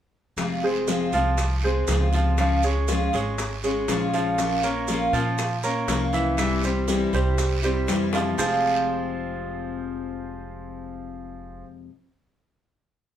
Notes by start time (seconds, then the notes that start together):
0.37 F1 C3 F3 G#3 C4 F4, high bongo, long guiro, maracas
0.63 G#3 C4 F4 G#4 C5
0.88 C3 F3 G#3 C4 F4, high bongo, short guiro, maracas
1.12 C2 F3 G#3 C4 F4 F5, short guiro, maracas
1.38 muted steel-string acoustic guitar stroke, high bongo, long guiro, maracas
1.63 G#3 C4 F4 G#4 C5
1.87 C#2 C3 F3 G#3 C4 F4, high bongo, low bongo, short guiro, maracas
2.13 F3 F4 F5, short guiro, maracas
2.38 C#3 F3 G#3 C#4 F4 F5, high bongo, long guiro, maracas
2.63 G#3 C#4 F4 G#4 C#5, maracas
2.88 C#3 F3 G#3 C#4 F4, high bongo, short guiro, maracas
3.13 G#1 G#3 C#4 F4 G#4 C#5, high bongo, short guiro, maracas
3.38 muted steel-string acoustic guitar stroke, high bongo, long guiro, maracas
3.64 G#3 C#4 F4 G#4 C#5, high bongo, maracas
3.87 A#1 C#3 F3 G#3 C#4 F4, high bongo, low bongo, short guiro, maracas
4.14 F3 F4 F5, high bongo, short guiro, maracas
4.38 F3 A#3 C#4 F4, high bongo, long guiro, maracas
4.63 A#3 C#4 F4 A#4 C#5, maracas
4.88 F3 A#3 C#4 F4, high bongo, short guiro, maracas
5.13 A#2 F3 A#3 C#4 F4 F5, short guiro, maracas
5.38 muted steel-string acoustic guitar stroke, high bongo, long guiro, maracas
5.63 A#3 C#4 F4 A#4 C#5, maracas
5.87 C2 F3 A#3 C#4 F4, high bongo, low bongo, short guiro, maracas
6.13 E3 E4 E5, short guiro, maracas
6.37 C3 E3 G3 C4 E4 E5, high bongo, long guiro, maracas
6.63 G3 C4 E4 G4 C5, maracas
6.88 C3 E3 G3 C4 E4, high bongo, short guiro, maracas
7.13 C2 G3 C4 E4 G4 C5, high bongo, short guiro, maracas
7.38 muted steel-string acoustic guitar stroke, high bongo, long guiro, maracas
7.62 G3 C4 E4 G4 C5, high bongo, maracas
7.87 F2 C3 E3 G3 C4 E4, high bongo, low bongo, short guiro, maracas
8.13 F3 F4 F5, high bongo, short guiro, maracas
8.38 F1 F2 C3 F3 G#3 C4 F4 G#4 C5 F5, low bongo, long guiro, maracas